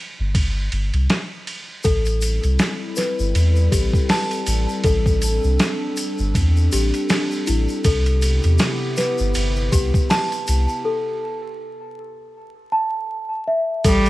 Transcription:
0.20 sub bass G1
0.35 sub bass G1, kick, ride
0.72 sub bass G1, ride
0.94 sub bass C2, ride
1.10 snare, ride
1.47 ride
1.83 sub bass A1, ambient pad G3 C4 E4 A4, celesta A4, kick, ride, shaker
2.05 ride, shaker
2.22 ride, shaker
2.43 sub bass C2, ride, shaker
2.59 snare, ride, shaker
2.96 celesta B4, snare, ride, shaker
3.19 sub bass G1, shaker
3.35 sub bass E2, ride, shaker
3.56 shaker
3.72 sub bass A1, celesta G4, kick, ride, shaker
3.94 kick, shaker
4.09 celesta A5, snare, open hi-hat, shaker
4.31 ride, shaker
4.46 sub bass A1, ride, shaker
4.69 shaker
4.84 sub bass A1, ambient pad D4, celesta A4, kick, ride, shaker
5.06 kick, shaker
5.22 ride, shaker
5.44 sub bass C2, shaker
5.59 snare, ride, shaker
5.97 ride, shaker
6.18 sub bass G1, shaker
6.35 sub bass E2, kick, ride, shaker
6.56 shaker
6.72 sub bass A1, celesta G4, ride, shaker
6.94 ride, shaker
7.09 snare, ride, shaker
7.31 shaker
7.47 sub bass A1, celesta E4, ride, shaker
7.69 shaker
7.84 sub bass C2, ambient pad C3 B3 E4 G4, celesta A4, kick, ride, shaker
8.06 ride, shaker
8.22 ride, shaker
8.43 sub bass E2, ride, shaker
8.58 snare, ride, shaker
8.97 celesta B4, snare, ride, shaker
9.18 sub bass G1, shaker
9.34 sub bass G1, ride, shaker
9.56 shaker
9.72 sub bass C2, celesta G4, kick, ride, shaker
9.94 kick, shaker
10.10 celesta A5, snare, open hi-hat, shaker
10.32 ride, shaker
10.47 sub bass C2, ride, shaker
10.68 shaker
10.85 celesta A4
12.72 celesta A5
13.48 celesta E5
13.84 sub bass A1, cello G3, celesta A4, kick, ride, shaker
14.05 ride, shaker

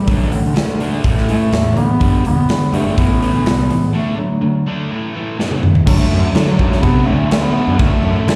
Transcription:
0.07 picked electric bass D2, distorted electric guitar D3 A3 D4, bass clarinet F#3, kick, open hi-hat
0.20 picked electric bass A1
0.32 bass clarinet D3, distorted electric guitar D3 A3, open hi-hat
0.44 picked electric bass D2
0.55 picked electric bass D2, distorted electric guitar D3 A3, snare, open hi-hat
0.80 distorted electric guitar D3 A3 D4, open hi-hat
1.04 picked electric bass A1, distorted electric guitar A2 E3 A3, kick, open hi-hat
1.16 picked electric bass A2, snare
1.29 distorted electric guitar A2 E3 A3, bass clarinet A3, open hi-hat
1.52 picked electric bass E2, distorted electric guitar A2 E3, snare, open hi-hat
1.76 picked electric bass D2, distorted electric guitar A2 E3, bass clarinet B3, open hi-hat
2.00 picked electric bass G1, distorted electric guitar G2 D3 G3, kick, open hi-hat
2.24 picked electric bass E1, distorted electric guitar G2 D3, bass clarinet B3, open hi-hat
2.49 distorted electric guitar G2 D3, snare, open hi-hat
2.73 distorted electric guitar G2 D3 G3, picked electric bass G2, bass clarinet A3, open hi-hat
2.85 picked electric bass G1
2.97 picked electric bass A1, distorted electric guitar A2 E3 A3, bass clarinet B3, kick, open hi-hat
3.22 distorted electric guitar A2 E3 A3, open hi-hat
3.34 picked electric bass D2
3.45 picked electric bass C2, distorted electric guitar A2 E3, snare, open hi-hat
3.70 distorted electric guitar A2 E3, open hi-hat
3.94 distorted electric guitar D3 A3 D4, bass clarinet A3
4.18 distorted electric guitar D3 A3, bass clarinet F#3
4.41 distorted electric guitar D3 A3
4.66 distorted electric guitar D3 A3 D4
4.91 distorted electric guitar A2 E3 A3
5.14 distorted electric guitar A2 E3 A3
5.38 distorted electric guitar B2 D#3 F#3, snare
5.51 high tom
5.63 distorted electric guitar B2 D#3, mid tom
5.75 floor tom
5.86 picked electric bass D2, distorted electric guitar D3 F#3 A3 D4 A4, bass clarinet F#3, kick, crash
5.98 bass clarinet A3
6.10 picked electric bass F#2, distorted electric guitar D3 F#3 A3 D4 A4
6.33 distorted electric guitar D3 F#3 A3 D4, picked electric bass D3, bass clarinet F#3, snare, crash
6.37 distorted electric guitar A4
6.46 bass clarinet F#3
6.59 picked electric bass F#2, distorted electric guitar D3 F#3 A3 D4 A4, kick
6.72 snare
6.82 picked electric bass C3, distorted electric guitar D3 F#3 A3 D4 A4, bass clarinet B3, kick, crash
7.06 picked electric bass D2, distorted electric guitar D3 F#3 A3 D4 A4, bass clarinet A3
7.31 distorted electric guitar D3 F#3 A3 D4 A4, bass clarinet A3, snare, crash
7.43 bass clarinet B3
7.55 distorted electric guitar D3 F#3 A3 D4 A4
7.67 picked electric bass F#2
7.78 picked electric bass D2, distorted electric guitar D3 F#3 A3 D4 A4, bass clarinet A3, kick, crash
8.03 picked electric bass F#2, distorted electric guitar D3 F#3 A3 D4 A4
8.27 picked electric bass D3, distorted electric guitar D3 F#3 A3 D4 A4, snare, crash

